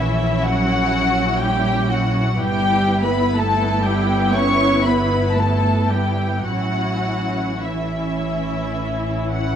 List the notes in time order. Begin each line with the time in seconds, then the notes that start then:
Already playing: A#1 C#4 E4 E5
0.00 E3 E4
0.44 F#3 F#4 F#5
1.40 G3 G4 G5
1.90 F#3 F#4 F#5
2.38 G1 G3 B3 E4 G4 G5
3.04 B3 B4 B5
3.37 A3 A4 A5
3.84 G3 G4 G5
4.34 C#4 C#5 C#6
4.85 B3 B4 B5
5.34 A5
5.39 A3 A4
5.89 G3 G4 G5
6.46 A1 F#3 C#4 F#4 F#5
6.50 E4
7.62 E3 C#4 E4 E5
9.31 F#5